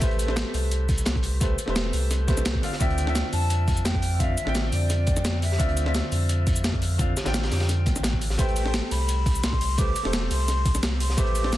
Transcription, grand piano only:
0.01 0.25 A3 loud
0.01 0.26 G4 medium
0.01 0.26 B4 medium
0.01 0.26 C5 loud
0.26 1.38 A3 medium
0.26 1.39 G4 medium
0.26 1.39 B4 medium
0.30 1.40 C5 medium
1.40 1.53 A3 medium
1.40 1.53 G4 medium
1.40 1.53 B4 medium
1.40 1.54 C5 medium
1.66 2.26 A3 medium
1.66 2.26 G4 medium
1.66 2.27 B4 medium
1.66 2.28 C5 medium
2.27 2.61 A3 medium
2.27 2.61 G4 medium
2.27 2.61 B4 medium
2.27 2.62 C5 medium
2.62 2.70 D3 medium
2.62 2.71 C4 medium
2.62 2.71 F4 medium
2.62 2.71 F5 medium
2.80 3.04 D3 loud
2.80 3.05 C4 medium
2.80 3.05 F4 medium
2.80 3.06 E5 loud
3.05 4.17 D3 medium
3.05 4.18 C4 medium
3.05 4.19 F4 medium
3.05 4.19 E5 medium
4.19 4.32 D3 medium
4.19 4.32 C4 medium
4.19 4.32 F4 medium
4.19 4.33 F5 medium
4.45 5.57 D3 medium
4.45 5.57 C4 medium
4.45 5.58 F4 medium
4.45 5.59 G5 medium
5.58 5.83 D3 loud
5.58 5.84 C4 medium
5.58 5.84 F4 medium
5.58 5.85 E5 loud
5.84 6.96 D3 medium
5.84 6.97 C4 medium
5.84 6.98 F4 medium
5.88 6.98 E5 medium
6.98 7.11 D3 medium
6.98 7.11 C4 medium
6.98 7.11 F4 medium
6.98 7.12 F5 medium
7.24 8.36 D3 medium
7.24 8.36 C4 medium
7.24 8.37 F4 medium
7.24 8.38 G5 medium
8.38 8.62 A3 loud
8.38 8.63 G4 medium
8.38 8.63 B4 medium
8.38 8.64 C5 loud
8.64 9.75 A3 medium
8.64 9.76 G4 medium
8.64 9.77 A4 medium
8.64 9.77 C5 medium
9.78 9.90 A3 medium
9.78 9.90 G4 medium
9.78 9.91 B4 medium
9.78 9.91 C5 medium
10.03 11.15 A3 medium
10.03 11.16 G4 medium
10.03 11.16 A4 medium
10.03 11.17 C5 medium
11.17 11.41 A3 loud
11.17 11.42 G4 medium
11.17 11.42 B4 medium
11.17 11.43 C5 loud
11.42 11.57 A3 medium
11.42 11.57 G4 medium
11.42 11.57 A4 medium
11.42 11.57 C5 medium

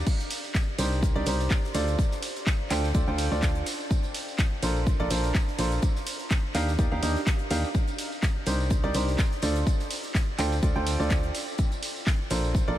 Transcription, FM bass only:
0.79 1.13 C2 loud
1.16 1.24 C2 loud
1.27 1.48 C2 loud
1.75 1.96 D2 loud
2.71 2.92 D2 medium
2.95 3.05 D2 loud
3.08 3.29 D2 loud
3.32 3.63 D2 loud
4.63 4.97 A#1 medium
5.00 5.08 A#1 medium
5.11 5.32 A#1 medium
5.59 5.79 A#1 loud
6.55 6.76 D#2 medium
6.79 6.89 D#2 loud
6.92 7.01 D#2 loud
7.03 7.16 D#2 loud
7.51 7.64 D#2 loud
8.47 8.81 C2 medium
8.84 8.92 C2 loud
8.95 9.16 C2 loud
9.43 9.64 D2 loud
10.39 10.60 D2 medium
10.63 10.73 D2 loud
10.76 10.97 D2 loud
11.00 11.31 D2 loud
12.31 12.65 A#1 medium
12.68 12.76 A#1 loud

